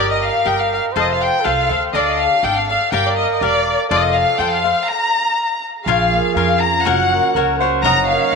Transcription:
Already playing: G1 A3 C4 F4 G4 A#4 D#5 G5
0.11 D#5
0.22 F5
0.45 G1 G4 A#4 D#5 G5
0.60 F5
0.74 F5
0.92 F1 F4 A4 C5
0.96 D#5 F5
1.12 F5
1.22 G5
1.41 F4 A4
1.45 C2 C5 F5
1.69 D2 A4 C5 F5
1.92 D2 D4 A4 D5 D#5 F5
2.07 D#5
2.20 F5
2.43 G#1 D4 A4 D5 F5 G5
2.56 F5
2.68 A4 D5 F5
2.90 G1 G4 A#4 D5 F5 G5
3.07 D5
3.16 D#5
3.32 D#5
3.41 E1 G4 A#4 D5 F5
3.89 F1 F4 A4 C5 D5 F5
4.00 D#5
4.14 F5
4.38 F2 F4 A4 C5 F5 G5
4.52 F5
4.64 A4 C5 F5
4.88 A#5
5.84 A#1 F3 F4 G#4 A#4 F5
5.89 C#5 F5
6.11 A#3
6.35 F2 C#4 F4 A#4 C#5 F5
6.59 F4 A#5
6.84 F#1 F#3 F#4 A#4 C#5 F#5
7.09 A#3
7.32 C#2 C#4 A#4
7.36 F#4 C#5 F#5
7.58 F#4 C5 C#5 F#5
7.63 A#4
7.82 F#1 F#3 D#4 A#4 C#5 D#5 F#5 A#5
8.07 A#3 F5
8.32 D#4 F#5

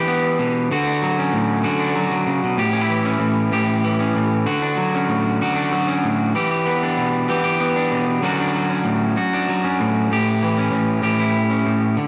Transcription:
Already playing: E3 D4 G4
0.08 B3
0.25 muted clean electric guitar stroke
0.39 B2
0.71 D3 F#4
0.87 D4
1.02 F#3
1.19 C#4
1.33 A2
1.64 D3 F#4
1.80 D4
1.96 F#3
2.11 D3
2.27 C#3
2.43 B2
2.57 A2 G4
2.73 C#4
2.81 E4
2.89 E3
3.05 C#4
3.19 A2
3.52 A2 G4
3.85 E3
4.00 C#4
4.16 A2
4.46 D3 F#4
4.62 D4
4.77 F#3
4.95 C#4
5.08 A2
5.41 D3 F#4
5.56 D4
5.72 F#3
5.88 C#4
6.04 A2
6.35 E3 G4
6.51 G4
6.66 B3
6.83 D4
6.97 B2
7.29 E3 G4
7.44 G4
7.60 B3
7.76 D4
7.92 B2
8.22 D3 F#3 C#4 D4 F#4
8.40 D4
8.54 F#3
8.70 C#4
8.84 A2
9.16 F#4, muted clean electric guitar stroke
9.33 D4
9.49 F#3
9.65 C#4
9.80 A2
10.11 A2 G4
10.43 E3
10.58 C#4
10.72 A2
11.02 A2 G4
11.19 E4
11.50 C#4
11.66 A2
11.97 D3

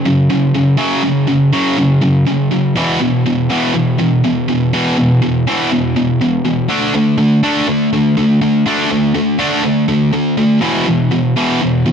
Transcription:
0.05 F#2 C#3
0.30 F#2 C#3
0.55 F#2 C#3
0.78 F#2 C#3 F#3
1.03 F#2 C#3
1.28 F#2 C#3
1.53 F#2 C#3 F#3
1.78 F#2 C#3
2.02 F#2 C#3
2.27 F#2 C#3
2.51 F#2 C#3
2.76 E2 B2 E3
3.00 E2 B2
3.26 E2 B2
3.49 E2 B2 E3
3.74 E2 B2
3.98 E2 B2
4.24 E2 B2
4.48 E2 B2
4.73 E2 B2 E3
4.97 E2 B2
5.22 E2 B2
5.47 E2 B2 E3
5.71 E2 B2
5.96 E2 B2
6.21 E2 B2
6.45 E2 B2
6.68 D3 A3 D4
6.94 D3 A3
7.18 D3 A3
7.43 D3 A3 D4
7.68 D3 A3
7.93 D3 A3
8.17 D3 A3
8.41 D3 A3
8.66 D3 A3 D4
8.90 D3 A3
9.15 D3 A3
9.39 D3 A3 D4
9.62 D3 A3
9.88 D3 A3
10.13 D3 A3
10.37 D3 A3
10.61 E2 B2 E3
10.87 E2 B2
11.11 E2 B2
11.36 E2 B2 E3
11.62 E2 B2
11.86 E2 B2

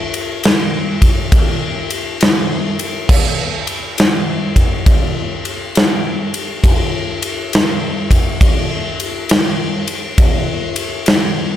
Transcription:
0.14 ride
0.43 snare, ride
1.02 kick, ride
1.32 kick, ride
1.90 ride
2.21 snare, ride
2.79 ride
3.09 kick, crash
3.67 ride
3.98 snare, ride
4.56 kick, ride
4.86 kick, ride
5.45 ride
5.75 snare, ride
6.34 ride
6.64 kick, ride
7.22 ride
7.53 snare, ride
8.11 kick, ride
8.41 kick, ride
9.00 ride
9.29 snare, ride
9.88 ride
10.18 kick, ride
10.76 ride
11.06 snare, ride

